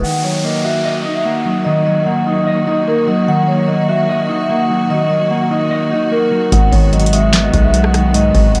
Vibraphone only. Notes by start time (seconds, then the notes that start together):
0.03 F#5
0.24 C#5
0.64 E5
1.16 E5
1.26 F#5
1.65 D#5
1.85 D#5
2.06 F#5
2.26 D#5
2.67 D#5
2.88 A#4
3.08 D#5
3.28 F#5
3.48 C#5
3.68 D#5
3.89 E5
4.19 D#5
4.39 E5
4.49 F#5
4.90 D#5
5.10 D#5
5.31 F#5
5.51 D#5
5.91 D#5
6.12 A#4
6.52 F#5
6.72 C#5
6.93 D#5
7.13 E5
7.43 D#5
7.64 E5
7.74 F#5
8.14 D#5
8.34 D#5
8.55 F#5